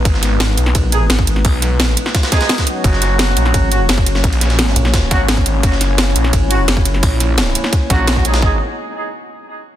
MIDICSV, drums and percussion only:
0, 0, Header, 1, 2, 480
1, 0, Start_track
1, 0, Key_signature, 5, "minor"
1, 0, Tempo, 348837
1, 72, Time_signature, 4, 2, 24, 8
1, 13434, End_track
2, 0, Start_track
2, 0, Title_t, "Drums"
2, 72, Note_on_c, 9, 36, 127
2, 72, Note_on_c, 9, 42, 78
2, 72, Note_on_c, 9, 51, 91
2, 193, Note_on_c, 9, 38, 44
2, 209, Note_off_c, 9, 36, 0
2, 209, Note_off_c, 9, 42, 0
2, 210, Note_off_c, 9, 51, 0
2, 312, Note_off_c, 9, 38, 0
2, 312, Note_on_c, 9, 38, 47
2, 312, Note_on_c, 9, 40, 34
2, 312, Note_on_c, 9, 42, 90
2, 312, Note_on_c, 9, 51, 71
2, 450, Note_off_c, 9, 38, 0
2, 450, Note_off_c, 9, 40, 0
2, 450, Note_off_c, 9, 42, 0
2, 450, Note_off_c, 9, 51, 0
2, 552, Note_on_c, 9, 38, 127
2, 552, Note_on_c, 9, 42, 78
2, 553, Note_off_c, 9, 38, 0
2, 553, Note_on_c, 9, 38, 123
2, 553, Note_on_c, 9, 51, 91
2, 689, Note_off_c, 9, 42, 0
2, 690, Note_off_c, 9, 38, 0
2, 690, Note_off_c, 9, 51, 0
2, 791, Note_on_c, 9, 42, 92
2, 793, Note_on_c, 9, 51, 69
2, 911, Note_on_c, 9, 40, 61
2, 929, Note_off_c, 9, 42, 0
2, 930, Note_off_c, 9, 51, 0
2, 1030, Note_on_c, 9, 42, 80
2, 1032, Note_on_c, 9, 36, 116
2, 1033, Note_on_c, 9, 51, 90
2, 1049, Note_off_c, 9, 40, 0
2, 1168, Note_off_c, 9, 42, 0
2, 1170, Note_off_c, 9, 36, 0
2, 1170, Note_off_c, 9, 51, 0
2, 1270, Note_on_c, 9, 42, 92
2, 1273, Note_on_c, 9, 51, 73
2, 1408, Note_off_c, 9, 42, 0
2, 1410, Note_off_c, 9, 51, 0
2, 1511, Note_on_c, 9, 38, 124
2, 1511, Note_on_c, 9, 42, 81
2, 1513, Note_off_c, 9, 38, 0
2, 1513, Note_on_c, 9, 38, 121
2, 1513, Note_on_c, 9, 51, 91
2, 1632, Note_on_c, 9, 36, 112
2, 1649, Note_off_c, 9, 42, 0
2, 1650, Note_off_c, 9, 38, 0
2, 1650, Note_off_c, 9, 51, 0
2, 1752, Note_on_c, 9, 42, 88
2, 1753, Note_on_c, 9, 51, 68
2, 1770, Note_off_c, 9, 36, 0
2, 1872, Note_on_c, 9, 40, 35
2, 1889, Note_off_c, 9, 42, 0
2, 1890, Note_off_c, 9, 51, 0
2, 1991, Note_on_c, 9, 42, 77
2, 1992, Note_on_c, 9, 36, 126
2, 1993, Note_on_c, 9, 46, 82
2, 2010, Note_off_c, 9, 40, 0
2, 2129, Note_off_c, 9, 42, 0
2, 2130, Note_off_c, 9, 36, 0
2, 2131, Note_off_c, 9, 46, 0
2, 2233, Note_on_c, 9, 40, 33
2, 2233, Note_on_c, 9, 42, 89
2, 2234, Note_on_c, 9, 51, 71
2, 2371, Note_off_c, 9, 40, 0
2, 2371, Note_off_c, 9, 42, 0
2, 2371, Note_off_c, 9, 51, 0
2, 2472, Note_on_c, 9, 38, 125
2, 2472, Note_on_c, 9, 42, 80
2, 2474, Note_off_c, 9, 38, 0
2, 2474, Note_on_c, 9, 38, 118
2, 2474, Note_on_c, 9, 51, 90
2, 2610, Note_off_c, 9, 42, 0
2, 2611, Note_off_c, 9, 38, 0
2, 2611, Note_off_c, 9, 51, 0
2, 2712, Note_on_c, 9, 42, 94
2, 2714, Note_on_c, 9, 51, 70
2, 2833, Note_on_c, 9, 40, 57
2, 2834, Note_on_c, 9, 38, 52
2, 2849, Note_off_c, 9, 42, 0
2, 2851, Note_off_c, 9, 51, 0
2, 2952, Note_on_c, 9, 36, 109
2, 2952, Note_on_c, 9, 42, 79
2, 2953, Note_off_c, 9, 38, 0
2, 2953, Note_on_c, 9, 38, 109
2, 2953, Note_on_c, 9, 51, 79
2, 2970, Note_off_c, 9, 40, 0
2, 3072, Note_off_c, 9, 38, 0
2, 3072, Note_off_c, 9, 51, 0
2, 3072, Note_on_c, 9, 38, 108
2, 3072, Note_on_c, 9, 51, 82
2, 3090, Note_off_c, 9, 36, 0
2, 3090, Note_off_c, 9, 42, 0
2, 3192, Note_off_c, 9, 38, 0
2, 3192, Note_off_c, 9, 51, 0
2, 3192, Note_on_c, 9, 36, 112
2, 3192, Note_on_c, 9, 38, 108
2, 3192, Note_on_c, 9, 42, 88
2, 3192, Note_on_c, 9, 51, 81
2, 3312, Note_off_c, 9, 38, 0
2, 3312, Note_off_c, 9, 51, 0
2, 3312, Note_on_c, 9, 38, 106
2, 3312, Note_on_c, 9, 51, 80
2, 3330, Note_off_c, 9, 36, 0
2, 3330, Note_off_c, 9, 42, 0
2, 3432, Note_off_c, 9, 38, 0
2, 3432, Note_off_c, 9, 51, 0
2, 3432, Note_on_c, 9, 38, 109
2, 3432, Note_on_c, 9, 42, 76
2, 3432, Note_on_c, 9, 51, 83
2, 3552, Note_off_c, 9, 38, 0
2, 3552, Note_off_c, 9, 51, 0
2, 3552, Note_on_c, 9, 36, 64
2, 3552, Note_on_c, 9, 38, 109
2, 3552, Note_on_c, 9, 51, 80
2, 3569, Note_off_c, 9, 42, 0
2, 3671, Note_on_c, 9, 42, 90
2, 3673, Note_off_c, 9, 51, 0
2, 3673, Note_on_c, 9, 51, 67
2, 3690, Note_off_c, 9, 36, 0
2, 3690, Note_off_c, 9, 38, 0
2, 3809, Note_off_c, 9, 42, 0
2, 3810, Note_off_c, 9, 51, 0
2, 3912, Note_on_c, 9, 36, 121
2, 3912, Note_on_c, 9, 42, 77
2, 3912, Note_on_c, 9, 51, 91
2, 4032, Note_on_c, 9, 38, 46
2, 4049, Note_off_c, 9, 42, 0
2, 4049, Note_off_c, 9, 51, 0
2, 4050, Note_off_c, 9, 36, 0
2, 4152, Note_off_c, 9, 38, 0
2, 4152, Note_on_c, 9, 38, 47
2, 4152, Note_on_c, 9, 40, 31
2, 4152, Note_on_c, 9, 42, 91
2, 4152, Note_on_c, 9, 51, 71
2, 4290, Note_off_c, 9, 38, 0
2, 4290, Note_off_c, 9, 40, 0
2, 4290, Note_off_c, 9, 42, 0
2, 4290, Note_off_c, 9, 51, 0
2, 4392, Note_on_c, 9, 38, 123
2, 4392, Note_on_c, 9, 51, 89
2, 4393, Note_off_c, 9, 38, 0
2, 4393, Note_on_c, 9, 38, 122
2, 4393, Note_on_c, 9, 42, 77
2, 4530, Note_off_c, 9, 38, 0
2, 4530, Note_off_c, 9, 42, 0
2, 4530, Note_off_c, 9, 51, 0
2, 4632, Note_on_c, 9, 51, 71
2, 4633, Note_on_c, 9, 42, 93
2, 4754, Note_on_c, 9, 40, 58
2, 4770, Note_off_c, 9, 51, 0
2, 4771, Note_off_c, 9, 42, 0
2, 4872, Note_on_c, 9, 36, 107
2, 4872, Note_on_c, 9, 51, 92
2, 4873, Note_on_c, 9, 42, 77
2, 4891, Note_off_c, 9, 40, 0
2, 5010, Note_off_c, 9, 36, 0
2, 5010, Note_off_c, 9, 51, 0
2, 5011, Note_off_c, 9, 42, 0
2, 5113, Note_on_c, 9, 42, 86
2, 5113, Note_on_c, 9, 51, 70
2, 5250, Note_off_c, 9, 42, 0
2, 5250, Note_off_c, 9, 51, 0
2, 5352, Note_on_c, 9, 38, 120
2, 5352, Note_on_c, 9, 51, 90
2, 5353, Note_off_c, 9, 38, 0
2, 5353, Note_on_c, 9, 38, 116
2, 5353, Note_on_c, 9, 42, 77
2, 5472, Note_on_c, 9, 36, 108
2, 5490, Note_off_c, 9, 51, 0
2, 5491, Note_off_c, 9, 38, 0
2, 5491, Note_off_c, 9, 42, 0
2, 5592, Note_on_c, 9, 51, 81
2, 5593, Note_on_c, 9, 42, 87
2, 5610, Note_off_c, 9, 36, 0
2, 5712, Note_on_c, 9, 38, 41
2, 5713, Note_on_c, 9, 40, 34
2, 5730, Note_off_c, 9, 51, 0
2, 5731, Note_off_c, 9, 42, 0
2, 5832, Note_on_c, 9, 36, 117
2, 5833, Note_off_c, 9, 38, 0
2, 5833, Note_on_c, 9, 38, 43
2, 5833, Note_on_c, 9, 42, 81
2, 5833, Note_on_c, 9, 51, 64
2, 5851, Note_off_c, 9, 40, 0
2, 5952, Note_off_c, 9, 51, 0
2, 5952, Note_on_c, 9, 51, 81
2, 5969, Note_off_c, 9, 36, 0
2, 5970, Note_off_c, 9, 42, 0
2, 5971, Note_off_c, 9, 38, 0
2, 6073, Note_on_c, 9, 38, 42
2, 6073, Note_on_c, 9, 40, 32
2, 6073, Note_on_c, 9, 42, 92
2, 6090, Note_off_c, 9, 51, 0
2, 6193, Note_off_c, 9, 38, 0
2, 6193, Note_on_c, 9, 38, 41
2, 6193, Note_on_c, 9, 51, 61
2, 6210, Note_off_c, 9, 40, 0
2, 6210, Note_off_c, 9, 42, 0
2, 6312, Note_off_c, 9, 38, 0
2, 6312, Note_on_c, 9, 38, 118
2, 6312, Note_on_c, 9, 42, 81
2, 6313, Note_off_c, 9, 51, 0
2, 6313, Note_on_c, 9, 51, 80
2, 6433, Note_off_c, 9, 38, 0
2, 6433, Note_on_c, 9, 38, 40
2, 6450, Note_off_c, 9, 42, 0
2, 6450, Note_off_c, 9, 51, 0
2, 6551, Note_on_c, 9, 42, 94
2, 6553, Note_on_c, 9, 51, 84
2, 6570, Note_off_c, 9, 38, 0
2, 6672, Note_on_c, 9, 38, 43
2, 6672, Note_on_c, 9, 40, 55
2, 6689, Note_off_c, 9, 42, 0
2, 6690, Note_off_c, 9, 51, 0
2, 6792, Note_off_c, 9, 38, 0
2, 6792, Note_on_c, 9, 36, 102
2, 6792, Note_on_c, 9, 38, 108
2, 6792, Note_on_c, 9, 42, 80
2, 6792, Note_on_c, 9, 51, 83
2, 6810, Note_off_c, 9, 40, 0
2, 6930, Note_off_c, 9, 36, 0
2, 6930, Note_off_c, 9, 38, 0
2, 6930, Note_off_c, 9, 42, 0
2, 6930, Note_off_c, 9, 51, 0
2, 7032, Note_on_c, 9, 36, 107
2, 7032, Note_on_c, 9, 51, 64
2, 7033, Note_on_c, 9, 38, 36
2, 7033, Note_on_c, 9, 42, 91
2, 7170, Note_off_c, 9, 36, 0
2, 7170, Note_off_c, 9, 38, 0
2, 7170, Note_off_c, 9, 42, 0
2, 7170, Note_off_c, 9, 51, 0
2, 7272, Note_on_c, 9, 38, 120
2, 7272, Note_on_c, 9, 51, 92
2, 7273, Note_off_c, 9, 38, 0
2, 7273, Note_on_c, 9, 38, 117
2, 7273, Note_on_c, 9, 42, 81
2, 7391, Note_off_c, 9, 51, 0
2, 7391, Note_on_c, 9, 51, 45
2, 7392, Note_on_c, 9, 36, 62
2, 7410, Note_off_c, 9, 38, 0
2, 7410, Note_off_c, 9, 42, 0
2, 7511, Note_off_c, 9, 51, 0
2, 7511, Note_on_c, 9, 51, 70
2, 7513, Note_on_c, 9, 42, 91
2, 7530, Note_off_c, 9, 36, 0
2, 7649, Note_off_c, 9, 51, 0
2, 7650, Note_off_c, 9, 42, 0
2, 7751, Note_on_c, 9, 51, 88
2, 7752, Note_on_c, 9, 36, 116
2, 7753, Note_on_c, 9, 42, 84
2, 7871, Note_on_c, 9, 38, 46
2, 7889, Note_off_c, 9, 51, 0
2, 7890, Note_off_c, 9, 36, 0
2, 7890, Note_off_c, 9, 42, 0
2, 7991, Note_off_c, 9, 38, 0
2, 7991, Note_on_c, 9, 38, 47
2, 7991, Note_on_c, 9, 51, 68
2, 7993, Note_on_c, 9, 40, 33
2, 7993, Note_on_c, 9, 42, 96
2, 8128, Note_off_c, 9, 38, 0
2, 8128, Note_off_c, 9, 51, 0
2, 8131, Note_off_c, 9, 40, 0
2, 8131, Note_off_c, 9, 42, 0
2, 8230, Note_on_c, 9, 38, 119
2, 8230, Note_on_c, 9, 51, 91
2, 8232, Note_off_c, 9, 38, 0
2, 8232, Note_on_c, 9, 38, 119
2, 8232, Note_on_c, 9, 42, 84
2, 8368, Note_off_c, 9, 51, 0
2, 8370, Note_off_c, 9, 38, 0
2, 8370, Note_off_c, 9, 42, 0
2, 8471, Note_on_c, 9, 51, 71
2, 8472, Note_on_c, 9, 42, 96
2, 8591, Note_on_c, 9, 40, 59
2, 8609, Note_off_c, 9, 51, 0
2, 8610, Note_off_c, 9, 42, 0
2, 8711, Note_on_c, 9, 42, 84
2, 8711, Note_on_c, 9, 51, 94
2, 8712, Note_on_c, 9, 36, 102
2, 8729, Note_off_c, 9, 40, 0
2, 8849, Note_off_c, 9, 36, 0
2, 8849, Note_off_c, 9, 42, 0
2, 8849, Note_off_c, 9, 51, 0
2, 8952, Note_on_c, 9, 42, 95
2, 8952, Note_on_c, 9, 51, 71
2, 9089, Note_off_c, 9, 51, 0
2, 9090, Note_off_c, 9, 42, 0
2, 9192, Note_on_c, 9, 38, 121
2, 9192, Note_on_c, 9, 51, 94
2, 9193, Note_off_c, 9, 38, 0
2, 9193, Note_on_c, 9, 38, 114
2, 9193, Note_on_c, 9, 42, 81
2, 9312, Note_on_c, 9, 36, 106
2, 9329, Note_off_c, 9, 51, 0
2, 9330, Note_off_c, 9, 38, 0
2, 9330, Note_off_c, 9, 42, 0
2, 9432, Note_on_c, 9, 42, 97
2, 9432, Note_on_c, 9, 51, 70
2, 9449, Note_off_c, 9, 36, 0
2, 9553, Note_on_c, 9, 40, 33
2, 9569, Note_off_c, 9, 42, 0
2, 9570, Note_off_c, 9, 51, 0
2, 9671, Note_on_c, 9, 36, 116
2, 9672, Note_on_c, 9, 42, 88
2, 9672, Note_on_c, 9, 46, 84
2, 9690, Note_off_c, 9, 40, 0
2, 9809, Note_off_c, 9, 36, 0
2, 9810, Note_off_c, 9, 42, 0
2, 9810, Note_off_c, 9, 46, 0
2, 9911, Note_on_c, 9, 51, 67
2, 9913, Note_on_c, 9, 40, 33
2, 9913, Note_on_c, 9, 42, 97
2, 10049, Note_off_c, 9, 51, 0
2, 10050, Note_off_c, 9, 40, 0
2, 10050, Note_off_c, 9, 42, 0
2, 10151, Note_on_c, 9, 38, 117
2, 10151, Note_on_c, 9, 51, 90
2, 10152, Note_off_c, 9, 38, 0
2, 10152, Note_on_c, 9, 38, 113
2, 10152, Note_on_c, 9, 42, 84
2, 10289, Note_off_c, 9, 51, 0
2, 10290, Note_off_c, 9, 38, 0
2, 10290, Note_off_c, 9, 42, 0
2, 10391, Note_on_c, 9, 51, 80
2, 10392, Note_on_c, 9, 42, 98
2, 10511, Note_on_c, 9, 38, 43
2, 10513, Note_on_c, 9, 40, 59
2, 10529, Note_off_c, 9, 51, 0
2, 10530, Note_off_c, 9, 42, 0
2, 10631, Note_off_c, 9, 38, 0
2, 10631, Note_on_c, 9, 36, 102
2, 10631, Note_on_c, 9, 38, 43
2, 10631, Note_on_c, 9, 51, 64
2, 10632, Note_on_c, 9, 42, 88
2, 10651, Note_off_c, 9, 40, 0
2, 10769, Note_off_c, 9, 36, 0
2, 10769, Note_off_c, 9, 38, 0
2, 10769, Note_off_c, 9, 51, 0
2, 10770, Note_off_c, 9, 42, 0
2, 10871, Note_on_c, 9, 36, 104
2, 10872, Note_on_c, 9, 38, 35
2, 10872, Note_on_c, 9, 42, 101
2, 11009, Note_off_c, 9, 36, 0
2, 11010, Note_off_c, 9, 38, 0
2, 11010, Note_off_c, 9, 42, 0
2, 11110, Note_on_c, 9, 38, 110
2, 11110, Note_on_c, 9, 51, 79
2, 11112, Note_off_c, 9, 38, 0
2, 11112, Note_on_c, 9, 38, 114
2, 11112, Note_on_c, 9, 42, 86
2, 11231, Note_on_c, 9, 36, 60
2, 11248, Note_off_c, 9, 51, 0
2, 11250, Note_off_c, 9, 38, 0
2, 11250, Note_off_c, 9, 42, 0
2, 11351, Note_on_c, 9, 42, 97
2, 11351, Note_on_c, 9, 51, 62
2, 11369, Note_off_c, 9, 36, 0
2, 11471, Note_off_c, 9, 51, 0
2, 11471, Note_on_c, 9, 38, 108
2, 11471, Note_on_c, 9, 51, 81
2, 11489, Note_off_c, 9, 42, 0
2, 11592, Note_on_c, 9, 36, 115
2, 11608, Note_off_c, 9, 38, 0
2, 11608, Note_off_c, 9, 51, 0
2, 11729, Note_off_c, 9, 36, 0
2, 13434, End_track
0, 0, End_of_file